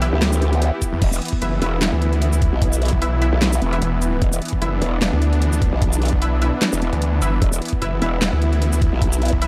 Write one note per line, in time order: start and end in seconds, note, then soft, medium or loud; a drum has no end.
0.00 0.11 B1 loud
0.00 9.47 E3 medium
0.00 9.47 B3 medium
0.00 0.12 E4 medium
0.00 1.01 G4 loud
0.00 0.12 B4 medium
0.00 0.12 E5 medium
0.00 open hi-hat loud
0.13 0.71 D2 loud
0.22 snare loud
0.22 clap medium
0.22 closed hi-hat medium
0.22 swell medium
0.33 shaker medium
0.42 closed hi-hat medium
0.53 closed hi-hat soft
0.62 closed hi-hat medium
0.82 kick medium
0.82 closed hi-hat medium
0.82 shaker medium
0.93 1.00 E2 loud
1.02 1.20 E1 loud
1.02 4.21 E4 medium
1.02 kick loud
1.02 closed hi-hat medium
1.02 crash medium
1.13 shaker medium
1.22 closed hi-hat medium
1.25 closed hi-hat medium
1.28 closed hi-hat medium
1.33 kick medium
1.42 1.60 F#1 loud
1.42 1.60 E4 medium
1.42 1.60 B4 medium
1.42 1.60 E5 medium
1.42 closed hi-hat medium
1.62 1.91 E1 loud
1.62 3.00 E4 medium
1.62 3.00 B4 medium
1.62 3.00 E5 medium
1.62 open hi-hat loud
1.82 snare loud
1.82 clap loud
1.82 closed hi-hat medium
1.93 2.31 D2 loud
2.02 closed hi-hat medium
2.13 closed hi-hat soft
2.22 closed hi-hat medium
2.33 2.51 D2 loud
2.33 shaker medium
2.42 kick loud
2.42 closed hi-hat medium
2.53 2.91 B1 loud
2.62 kick loud
2.62 closed hi-hat medium
2.73 shaker medium
2.82 closed hi-hat soft
2.85 closed hi-hat medium
2.88 closed hi-hat medium
2.93 3.31 B1 loud
2.93 kick medium
3.02 3.17 E4 medium
3.02 3.17 B4 medium
3.02 3.17 E5 medium
3.02 closed hi-hat medium
3.22 3.32 E4 medium
3.22 3.32 B4 medium
3.22 3.32 E5 loud
3.22 open hi-hat medium
3.33 3.60 B1 loud
3.42 snare loud
3.42 clap loud
3.42 closed hi-hat medium
3.53 shaker medium
3.62 3.80 E1 loud
3.62 closed hi-hat medium
3.73 3.81 E4 medium
3.73 3.81 B4 medium
3.73 3.81 E5 medium
3.73 closed hi-hat soft
3.82 4.20 E1 loud
3.82 closed hi-hat medium
4.02 closed hi-hat medium
4.02 shaker medium
4.22 4.40 E1 loud
4.22 7.41 D4 loud
4.22 kick loud
4.22 closed hi-hat medium
4.33 shaker medium
4.42 closed hi-hat soft
4.45 closed hi-hat medium
4.48 closed hi-hat medium
4.53 kick medium
4.62 4.80 F#1 medium
4.62 4.80 E4 medium
4.62 4.80 B4 medium
4.62 4.80 E5 medium
4.62 closed hi-hat medium
4.82 5.11 E1 loud
4.82 open hi-hat medium
5.02 snare loud
5.02 clap loud
5.02 closed hi-hat medium
5.13 5.51 D2 loud
5.22 closed hi-hat medium
5.33 closed hi-hat soft
5.42 closed hi-hat medium
5.53 5.71 D2 loud
5.53 shaker medium
5.62 kick loud
5.62 closed hi-hat medium
5.73 6.11 B1 loud
5.82 kick loud
5.82 closed hi-hat medium
5.93 shaker medium
6.02 closed hi-hat soft
6.05 closed hi-hat medium
6.08 closed hi-hat medium
6.13 6.51 B1 loud
6.13 kick medium
6.22 6.37 E4 medium
6.22 6.37 B4 medium
6.22 6.37 E5 medium
6.22 closed hi-hat medium
6.42 6.52 E4 medium
6.42 6.52 B4 medium
6.42 6.52 E5 medium
6.42 open hi-hat medium
6.62 snare loud
6.62 clap loud
6.62 closed hi-hat medium
6.73 6.91 E1 loud
6.73 shaker medium
6.82 closed hi-hat medium
6.93 7.20 D2 loud
6.93 closed hi-hat soft
7.02 closed hi-hat medium
7.22 7.40 G1 medium
7.22 7.32 E4 medium
7.22 7.32 B4 medium
7.22 7.32 E5 loud
7.22 closed hi-hat medium
7.22 shaker medium
7.42 7.60 E1 loud
7.42 9.47 E4 medium
7.42 kick loud
7.42 closed hi-hat medium
7.53 shaker medium
7.62 closed hi-hat soft
7.65 closed hi-hat medium
7.68 closed hi-hat medium
7.73 kick medium
7.82 8.00 F#1 medium
7.82 8.00 E4 medium
7.82 8.00 B4 medium
7.82 8.00 E5 medium
7.82 closed hi-hat medium
8.02 8.31 E1 loud
8.02 9.40 E4 medium
8.02 9.40 B4 medium
8.02 9.40 E5 medium
8.02 open hi-hat medium
8.22 snare loud
8.22 clap medium
8.22 closed hi-hat medium
8.33 8.71 D2 loud
8.42 closed hi-hat medium
8.53 closed hi-hat soft
8.62 closed hi-hat medium
8.73 8.91 D2 loud
8.73 shaker medium
8.82 kick loud
8.82 closed hi-hat medium
8.93 9.31 B1 loud
9.02 kick loud
9.02 closed hi-hat medium
9.13 shaker medium
9.22 closed hi-hat soft
9.25 closed hi-hat medium
9.28 closed hi-hat medium
9.33 9.47 B1 loud
9.33 kick medium
9.42 9.47 E4 medium
9.42 9.47 B4 medium
9.42 9.47 E5 medium
9.42 closed hi-hat medium